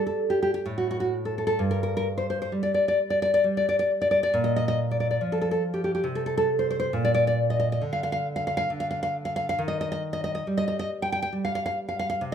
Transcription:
Already playing: G3
0.07 A4
0.30 G4
0.43 G4
0.54 G4
0.66 A2
0.78 F#4
0.91 F#4
1.00 F#4
1.25 A4
1.38 A4
1.47 A4
1.59 G2
1.71 A#4
1.83 A#4
1.97 A#4
2.18 C5
2.30 C5
2.42 C5
2.52 G3
2.63 D5
2.74 D5
2.88 D5
3.10 D5
3.22 D5
3.34 D5
3.44 G3
3.57 D5
3.69 D5
3.79 D5
4.02 D5
4.11 D5
4.23 D5
4.34 A#2
4.44 D#5
4.56 D#5
4.68 D#5
4.91 D5
5.00 D5
5.11 D5
5.21 F3
5.32 A4
5.41 A4
5.51 A4
5.74 G4
5.84 G4
5.95 G4
6.04 C3
6.15 A4
6.26 A4
6.37 A4
6.59 C5
6.71 C5
6.80 C5
6.93 A#2
7.05 D5
7.14 D5
7.27 D5
7.50 D#5
7.60 D#5
7.72 D#5
7.81 D3
7.93 F5
8.03 F5
8.12 F5
8.36 F5
8.47 F5
8.57 F5
8.70 D3
8.80 F5
8.91 F5
9.03 F5
9.25 F5
9.36 F5
9.49 F5
9.59 D#3
9.68 D#5
9.81 D#5
9.92 D#5
10.13 D#5
10.24 D#5
10.35 D#5
10.47 G3
10.58 D#5
10.68 D#5
10.79 D#5
11.02 G5
11.12 G5
11.22 G5
11.33 G3
11.45 F5
11.55 F5
11.66 F5
11.89 F5
11.99 F5
12.10 F5
12.21 C3

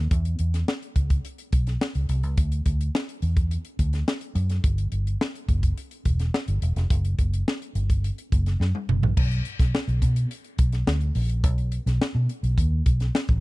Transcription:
0.11 E2, kick, closed hi-hat
0.25 closed hi-hat
0.39 E2, closed hi-hat
0.54 snare, closed hi-hat
0.68 snare
0.82 closed hi-hat
0.96 C#2, kick, closed hi-hat
1.10 kick, closed hi-hat
1.25 closed hi-hat
1.38 closed hi-hat
1.52 B1, kick, closed hi-hat
1.67 snare, closed hi-hat
1.81 snare
1.95 C#2, closed hi-hat
2.09 C2, closed hi-hat
2.23 C#2, closed hi-hat
2.37 D2, kick, closed hi-hat
2.52 closed hi-hat
2.66 D2, kick, closed hi-hat
2.81 closed hi-hat
2.95 snare
3.09 closed hi-hat
3.22 E2, closed hi-hat
3.37 kick, closed hi-hat
3.51 closed hi-hat
3.65 closed hi-hat
3.79 D2, kick, closed hi-hat
3.93 snare, closed hi-hat
4.08 snare
4.21 closed hi-hat
4.35 F#2, closed hi-hat
4.50 snare, closed hi-hat
4.64 G1, kick, closed hi-hat
4.78 closed hi-hat
4.92 G1, closed hi-hat
5.07 closed hi-hat
5.21 snare
5.35 closed hi-hat
5.48 F#1, kick, closed hi-hat
5.63 kick, closed hi-hat
5.78 closed hi-hat
5.91 closed hi-hat
6.05 E1, kick, closed hi-hat
6.19 snare, closed hi-hat
6.34 snare
6.48 G1, closed hi-hat
6.62 E1, closed hi-hat
6.76 F1, snare, closed hi-hat
6.90 F#1, kick, closed hi-hat
7.05 closed hi-hat
7.19 F#1, kick, closed hi-hat
7.34 closed hi-hat
7.48 snare
7.62 closed hi-hat
7.75 G1, closed hi-hat
7.90 kick, closed hi-hat
8.04 closed hi-hat
8.18 closed hi-hat
8.32 F#1, kick, closed hi-hat
8.46 snare, closed hi-hat
8.60 F#2, snare
8.75 high tom
8.89 F#1, mid tom
9.03 A#1, floor tom
9.17 B1, kick, crash
9.31 closed hi-hat
9.45 closed hi-hat
9.59 B1, kick, snare, closed hi-hat
9.75 snare
9.88 B1, closed hi-hat
10.02 B2, kick, closed hi-hat
10.16 closed hi-hat
10.31 closed hi-hat
10.44 closed hi-hat
10.58 B1, kick, closed hi-hat
10.72 snare, closed hi-hat
10.87 D2, snare
11.01 closed hi-hat
11.15 A#1, open hi-hat
11.30 closed hi-hat
11.44 B1, kick, closed hi-hat
11.58 closed hi-hat
11.72 closed hi-hat
11.86 B1, snare, closed hi-hat
12.01 muted fingered electric bass stroke, snare
12.15 B2
12.29 closed hi-hat
12.43 B1, closed hi-hat
12.58 D#2, kick, closed hi-hat
12.86 B1, kick, closed hi-hat
13.00 snare, closed hi-hat
13.15 snare
13.28 A1, kick, closed hi-hat

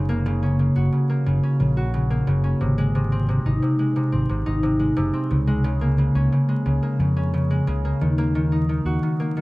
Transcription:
Already playing: F#1 C#3 D#4
0.09 A#3
0.26 C#3
0.43 C#4
0.59 C#3
0.76 F#1 F#4
0.92 C#3
1.09 A#3
1.26 F#1 C#3
1.43 C#4
1.60 A#1 C#3
1.77 F#4
1.94 C#3
2.10 A#3
2.27 F#1 C#3
2.44 C#4
2.61 G#1 C3
2.78 G#3
2.95 C3
3.12 C4
3.29 C3
3.46 G#1 D#4
3.62 C3
3.79 G#3
3.96 C3
4.12 G#1 C4
4.29 G#1 C3
4.46 G#1 D#4
4.63 C3
4.79 G#3
4.96 F#1 C3
5.14 C4
5.31 C#2 C#3
5.47 G#3
5.64 C#3
5.81 A#3
5.98 C#3
6.15 C#2 C#4
6.32 C#3
6.49 G#3
6.66 C#2 C#3
6.83 A#3
6.99 F2 C#3
7.17 C#4
7.34 C#3
7.51 G#3
7.67 C#2 C#3
7.85 A#3
8.01 D#2 D#3
8.18 A#3
8.35 D#3
8.52 D#4
8.69 D#3
8.85 D#2 F#4
9.03 D#3
9.20 A#3
9.37 D#3

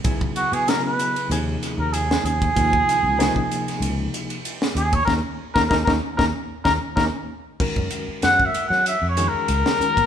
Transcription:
0.04 B1 C#3 F#3 B3 E4 G#4, kick, hi-hat pedal, ride
0.21 kick
0.36 F#4, hi-hat pedal, ride
0.52 B2 G#4, ride
0.68 C#3 F#3 B3 E4 G#4 A#4, snare, hi-hat pedal, ride
0.85 B4
0.99 hi-hat pedal, ride
1.16 ride
1.30 D#2 C3 F3 A#3 D#4 G#4, hi-hat pedal, ride
1.63 snare, hi-hat pedal, ride
1.78 D#2 A#4
1.93 G#4, hi-hat pedal, ride
2.11 snare
2.24 D#2 G#4, hi-hat pedal, ride
2.42 kick, ride
2.56 D#2 C3 F3 A#3 D#4 F4, kick, hi-hat pedal, ride
2.73 kick
2.87 muted fretless electric bass stroke, snare, hi-hat pedal, ride
3.03 C#2
3.19 C3 F3 A#3 D#4 G#4, snare, hi-hat pedal, ride
3.36 kick
3.51 hi-hat pedal, ride
3.68 snare, ride
3.81 C#2, hi-hat pedal, ride
4.14 hi-hat pedal, ride
4.30 ride
4.45 hi-hat pedal, ride
4.62 snare
4.75 D#2 G#4, hi-hat pedal, ride
4.93 C#5, kick, ride
5.05 D#2 A#3 C#4 D#4 A#4, kick, snare
5.54 D#2 A#3 C#4 D#4 A#4, kick, snare
5.69 D#2 A#3 C#4 D#4 A#4, kick, snare
5.84 D#2 A#3 C#4 D#4 A#4, kick
5.88 snare
6.17 D#2 A#3 C#4 D#4 A#4, kick, snare
6.64 D#2 A#3 C#4 D#4 A#4, kick, snare
6.96 D#2 A#3 C#4 D#4 A#4, kick, snare
7.60 D#3 G#3 C#4 F#4 A#4, muted fretless electric bass stroke, kick, crash
7.76 F#2, kick
7.91 hi-hat pedal, ride bell
8.08 muted fretless electric bass stroke
8.22 F#2 F#5, snare, hi-hat pedal, ride bell
8.40 kick
8.46 E5
8.54 hi-hat pedal, ride bell
8.68 F#3 F#5, snare
8.86 E5, hi-hat pedal, ride bell
9.02 F2
9.09 C#5
9.17 D#3 G#3 C#4 F#4 G#4, hi-hat pedal, ride bell
9.28 A#4
9.34 muted fretless electric bass stroke
9.48 C#2, hi-hat pedal, ride bell
9.66 snare
9.80 D#3 G#3 C#4 F#4 A#4, muted fretless electric bass stroke, hi-hat pedal
9.97 A#2, kick, snare, ride bell

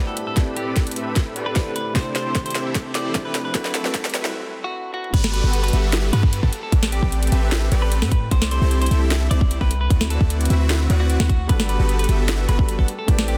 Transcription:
Already playing: G2 D3 G3 A3 D4 E4 G4 A4 B4 C5 D5 F#5 B5, riser
0.07 B3 F#4 G4 A4 F#5
0.17 A2 C4 D4 G4, closed hi-hat
0.27 A4
0.34 A3 C4 E4 G4 A4 B4 D5, kick, snare, closed hi-hat
0.39 D5
0.57 G4, closed hi-hat
0.67 C4 G4 A4 B4 D5
0.76 kick, snare, closed hi-hat
0.87 closed hi-hat
0.91 closed hi-hat
0.96 C4 G4 A4 B4 E5, closed hi-hat
1.16 kick, snare, closed hi-hat
1.36 C4 G4 A4 B4 D5, closed hi-hat
1.46 B4
1.55 A3 E4 G4 B4 C5 D5, kick, snare, closed hi-hat
1.66 C4 G4 A4 B4 F#5
1.76 B4, closed hi-hat
1.94 C3 A3 C4 D4 E4 G4 A4 C5 D5, kick, snare, closed hi-hat
2.15 C5, snare, closed hi-hat
2.26 C4 E4 G4 A4 C5
2.35 kick, snare, closed hi-hat
2.46 C5, closed hi-hat
2.50 closed hi-hat
2.55 C4 E4 G4 A4 E5, snare, closed hi-hat
2.75 kick, snare, closed hi-hat
2.95 C4 E4 G4 A4 C5 D5, snare, closed hi-hat
3.14 C3 A3 D4 E4 C5, kick, snare, closed hi-hat
3.25 C4 E4 G4 A4 B4 G5
3.35 snare, closed hi-hat
3.45 B4
3.53 D2 D3 A3 C4 E4 F#4 B4 D5, kick, snare, closed hi-hat
3.57 B4
3.65 snare
3.74 A4, snare, closed hi-hat
3.85 C4 E4 F#4 B4 D5, snare
3.94 kick, snare, closed hi-hat
4.05 snare, closed hi-hat
4.10 closed hi-hat
4.14 C4 E4 F#4 B4 E5, snare, closed hi-hat
4.25 snare
4.64 F#4
4.94 F#4, high tom
5.04 mid tom
5.14 G1 G3 B3 D4 F#4 G4 A4 B4 D5 F#5, kick, closed hi-hat, crash, downlifter
5.24 snare
5.33 B4, closed hi-hat
5.44 G1 B3 F#4 G4 A4 B4
5.53 closed hi-hat
5.63 B4, closed hi-hat
5.68 closed hi-hat
5.73 G1 B3 F#4 G4 A4 E5, closed hi-hat
5.93 snare, closed hi-hat
6.13 G2 B3 F#4 G4 A4 B4, closed hi-hat
6.23 kick
6.33 closed hi-hat
6.43 G2 B3 F#4 G4 A4 F#5, kick
6.52 A3 C4 G4, closed hi-hat
6.63 A4
6.72 A1 C4 G4 A4 B4 D5, kick, closed hi-hat
6.83 snare
6.92 G4, closed hi-hat
7.03 A1 C4 G4 A4 B4 D5, kick
7.12 closed hi-hat
7.23 closed hi-hat
7.27 closed hi-hat
7.32 A1 C4 G4 A4 B4 E5, closed hi-hat
7.52 snare, closed hi-hat
7.72 A1 C4 G4 A4 B4 D5, closed hi-hat
7.82 B4
7.92 closed hi-hat
8.02 A2 C4 G4 A4 B4 F#5, snare
8.11 B4, kick, closed hi-hat
8.31 C2 C3 G3 C4 D4 E4 G4 A4 C5 D5, kick, closed hi-hat
8.42 snare
8.51 C5, closed hi-hat
8.61 C2 C4 E4 G4 A4 C5
8.71 closed hi-hat
8.81 C5, closed hi-hat
8.86 closed hi-hat
8.91 C2 C4 E4 G4 A4 E5, closed hi-hat
9.11 snare, closed hi-hat
9.31 C2 C4 E4 G4 A4 C5 D5, closed hi-hat
9.41 kick
9.51 closed hi-hat
9.61 C2 C4 E4 G4 A4 B4 G5, kick
9.71 closed hi-hat
9.81 B4
9.90 D2 D3 C4 E4 F#4 B4 D5 F#5, kick, closed hi-hat
10.01 snare
10.10 A4, closed hi-hat
10.21 D2 C4 E4 F#4 B4 D5, kick
10.30 closed hi-hat
10.41 closed hi-hat
10.45 closed hi-hat
10.50 D2 C4 E4 F#4 B4 E5, closed hi-hat
10.70 snare, closed hi-hat
10.90 D2 C4 E4 F#4 B4 D5, closed hi-hat
11.00 F#4
11.10 closed hi-hat
11.20 D2 C4 E4 F#4 B4 F#5, snare
11.29 F#4, kick, closed hi-hat
11.47 G1 G3 B3 D4 F#4 G4 A4 B4 D5 F#5, kick, closed hi-hat, ride
11.51 B4
11.60 snare
11.69 B4, closed hi-hat
11.79 G1 B3 F#4 G4 A4 B4
11.89 closed hi-hat
11.99 B4, closed hi-hat
12.04 closed hi-hat
12.09 G1 B3 F#4 G4 A4 E5, closed hi-hat
12.29 snare, closed hi-hat
12.48 G1 B3 F#4 G4 A4 B4, closed hi-hat
12.58 G3 D4 F#4 A4 B4, kick
12.69 closed hi-hat
12.79 G1 B3 F#4 G4 A4 F#5, kick
12.88 A3 C4 G4, closed hi-hat
12.99 A4
13.06 A1 A3 C4 E4 G4 A4 B4 D5, kick, closed hi-hat, ride
13.10 D5
13.19 snare
13.28 G4, closed hi-hat

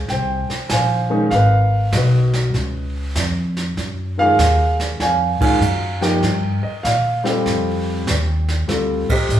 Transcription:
Already playing: G#4 C5
0.08 C2 C5 G5, brush sweep, kick, snare
0.49 muted upright bass stroke, snare
0.69 A#1 C5 F5 G#5, kick, snare, hi-hat pedal
1.10 D#3 G#3 C#4 D#4
1.31 G#1 A#4 B4 F5, brush sweep, kick, snare
1.92 B1 D#5, kick, snare, hi-hat pedal
1.97 F#4 B4
2.33 snare
2.54 C#2, brush sweep, kick, snare
3.15 F2, kick, snare, hi-hat pedal
3.57 snare
3.77 F#2, brush sweep, kick, snare
4.18 D#3 G#3 C#4 F4 G#4 A#4 F5
4.38 D#2, kick, snare, hi-hat pedal
4.80 snare
5.00 F2 C#5 F5 G#5, brush sweep, kick, snare
5.40 D#3 G#3 C#4 F4 C#5 F5 G#5, muted upright bass stroke, kick, ride
5.60 F#2, hi-hat pedal
6.01 F3 A#3 D#4 G4 A#4 G5, snare
6.05 D#5
6.22 G2, brush sweep, kick, snare
6.63 D#5, muted upright bass stroke
6.83 A#2 F5, kick, snare, hi-hat pedal
7.24 G3 C4 F4 A4 G5, snare
7.28 C5 D#5
7.45 F2, brush sweep, kick, snare
8.07 D#2, kick, snare, hi-hat pedal
8.48 snare
8.68 D2 G3 C4 F4 A4, brush sweep, kick, snare
9.09 G4 C5 D#5, muted upright bass stroke, kick, ride
9.29 A1, hi-hat pedal

